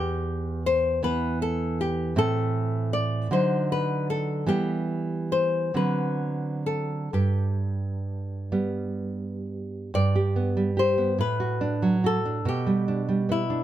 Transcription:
0.00 2.14 E2 soft
0.00 0.62 G4 medium
0.66 1.02 C5 medium
1.03 2.14 E3 soft
1.03 2.14 B3 soft
1.03 1.40 B4 medium
1.42 1.78 A4 soft
1.81 2.16 G4 medium
2.16 3.27 A2 soft
2.16 3.27 E3 soft
2.16 3.27 C4 soft
2.16 2.90 A4 medium
2.93 3.29 D5 medium
3.31 4.44 D3 soft
3.31 4.43 F#3 soft
3.31 4.43 D#4 soft
3.31 3.68 C5 soft
3.72 4.07 B4 medium
4.10 4.46 A4 medium
4.46 5.71 E3 soft
4.46 5.71 G3 soft
4.46 5.71 B3 soft
4.46 5.28 G4 medium
5.32 5.72 C5 soft
5.74 7.08 D3 soft
5.74 7.08 F#3 soft
5.74 7.08 C4 soft
5.74 6.62 B4 soft
6.66 7.10 A4 soft
7.13 9.90 G2 soft
7.13 9.45 G4 soft
8.52 9.90 G3 soft
8.52 9.89 B3 soft
9.94 11.16 G2 soft
9.94 10.75 D5 medium
10.15 10.49 G4 soft
10.36 10.70 B3 soft
10.57 10.90 G3 soft
10.77 11.11 G4 soft
10.77 11.18 C5 medium
10.98 11.19 B3 soft
11.18 12.42 A2 soft
11.18 12.01 B4 medium
11.40 11.75 F#4 soft
11.61 11.96 D4 soft
11.82 12.17 F#3 soft
12.04 12.38 F#4 soft
12.04 12.45 A4 medium
12.25 12.46 D4 soft
12.45 13.64 B2 soft
12.45 13.26 G4 medium
12.66 13.00 G3 soft
12.88 13.21 D4 soft
13.09 13.41 G3 soft
13.29 13.61 B3 soft
13.29 13.64 E4 medium
13.50 13.64 D4 soft

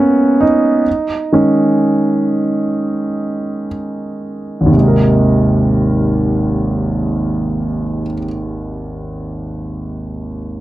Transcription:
0.00 0.82 F#3 soft
0.00 0.82 G#3 soft
0.00 0.88 A#3 medium
0.00 0.88 B3 medium
0.00 0.42 C#4 medium
0.00 0.83 E4 soft
0.41 3.68 D#4 medium
1.32 4.70 D#3 soft
1.32 4.70 G#3 soft
1.32 4.71 C#4 soft
4.61 8.01 G#1 soft
4.66 8.06 D#2 soft
4.72 8.12 C3 soft
4.77 8.17 G#3 soft
4.82 8.22 D#4 soft
4.88 8.28 A#4 soft

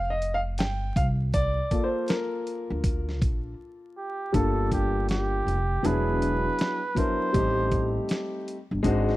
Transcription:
0.00 0.59 F1 medium
0.00 0.10 F5 loud
0.10 0.35 D#5 medium
0.22 closed hi-hat medium
0.34 0.40 F5 loud
0.58 0.90 G1 medium
0.58 0.94 G5 medium
0.58 snare loud
0.58 closed hi-hat medium
0.96 1.58 C2 medium
0.96 1.05 F5 loud
0.96 kick loud
0.96 closed hi-hat medium
1.34 1.86 D5 loud
1.34 kick loud
1.34 closed hi-hat loud
1.71 4.30 A#3 soft
1.71 4.31 F4 medium
1.71 4.30 A4 medium
1.71 kick medium
1.71 closed hi-hat medium
1.84 2.10 C5 medium
2.08 3.18 A#4 medium
2.08 snare loud
2.08 closed hi-hat medium
2.47 closed hi-hat medium
2.70 3.21 D2 medium
2.84 kick loud
2.84 closed hi-hat loud
3.09 snare soft
3.21 3.53 A#1 loud
3.21 kick loud
3.21 closed hi-hat medium
3.97 4.36 G4 medium
4.32 5.43 G1 loud
4.32 5.55 G3 medium
4.32 5.55 A#3 medium
4.32 5.55 D4 medium
4.32 5.56 F4 medium
4.32 4.72 A4 medium
4.32 5.56 A4 medium
4.32 kick loud
4.32 closed hi-hat medium
4.72 5.07 G4 medium
4.72 kick medium
4.72 closed hi-hat medium
5.09 5.88 G4 medium
5.09 snare medium
5.09 closed hi-hat medium
5.47 5.78 F1 medium
5.47 closed hi-hat medium
5.83 6.46 E1 loud
5.83 6.78 F#3 medium
5.83 6.78 B3 medium
5.83 6.79 D4 medium
5.83 6.79 E4 medium
5.83 6.79 G#4 medium
5.83 7.00 B4 loud
5.83 closed hi-hat loud
6.22 closed hi-hat medium
6.59 snare loud
6.59 closed hi-hat medium
6.95 7.28 F#3 medium
6.95 7.28 B3 medium
6.95 7.28 D4 medium
6.95 7.29 E4 medium
6.95 7.29 A#4 medium
6.95 8.10 C5 loud
6.95 kick medium
6.95 closed hi-hat medium
7.33 7.96 A1 loud
7.33 8.55 G3 medium
7.33 8.55 A3 medium
7.33 8.55 C4 medium
7.33 8.56 D#4 medium
7.33 8.56 G4 medium
7.33 kick loud
7.33 closed hi-hat loud
7.71 kick medium
7.71 closed hi-hat medium
8.09 snare loud
8.09 closed hi-hat medium
8.48 closed hi-hat medium
8.71 8.82 G1 medium
8.83 9.15 G#1 medium
8.83 9.17 G#3 loud
8.83 9.17 C4 medium
8.83 9.17 D4 medium
8.83 9.17 D#4 medium
8.83 9.17 F#4 loud
8.83 kick loud
8.83 closed hi-hat loud
9.09 snare soft

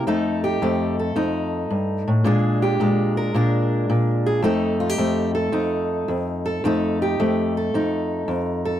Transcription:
0.07 0.61 F2 medium
0.07 0.61 A3 medium
0.07 1.15 D#4 medium
0.07 0.43 A4 medium
0.44 0.98 G4 medium
0.62 1.15 F2 medium
0.62 2.24 A3 medium
1.00 2.24 A4 medium
1.16 1.70 F2 medium
1.16 2.23 D#4 medium
1.70 2.07 G2 medium
2.08 2.25 A2 medium
2.24 2.79 A#2 medium
2.24 2.80 G#3 medium
2.24 3.34 D4 medium
2.24 2.62 G#4 medium
2.62 3.17 G4 medium
2.80 3.33 A#2 medium
2.80 4.43 G#3 medium
3.17 4.26 A#4 medium
3.34 3.88 A#2 medium
3.34 4.43 D4 medium
3.90 4.45 A#2 medium
4.26 4.42 G#4 medium
4.42 4.98 F2 medium
4.42 4.98 A3 medium
4.42 5.52 D#4 medium
4.42 4.80 A4 medium
4.80 4.90 F4 medium
4.90 5.34 G4 medium
4.98 5.52 F2 medium
4.98 6.62 A3 medium
5.35 6.44 A4 medium
5.52 6.07 F2 medium
5.52 6.61 D#4 medium
6.08 6.63 F2 medium
6.46 6.62 A4 medium
6.64 7.19 F2 medium
6.64 7.18 A3 medium
6.64 7.74 D#4 medium
6.64 7.02 A4 medium
7.02 7.56 G4 medium
7.20 7.73 F2 medium
7.20 8.80 A3 medium
7.57 8.64 A4 medium
7.74 8.27 F2 medium
7.74 8.80 D#4 medium
8.28 8.80 F2 medium
8.65 8.80 A4 medium

